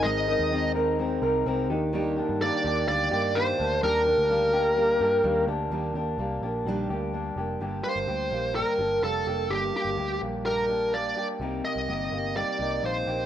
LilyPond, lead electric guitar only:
\new Staff \with { instrumentName = "Lead electric guitar" } { \time 4/4 \key ees \major \tempo 4 = 127 ees''4. r2 r8 | r4 d''4 d''4 c''4 | bes'2.~ bes'8 r8 | r1 |
\key g \minor r8 c''4. bes'4 a'4 | g'8 g'4 r8 bes'4 d''8. r16 | r8 ees''4. d''4 c''4 | }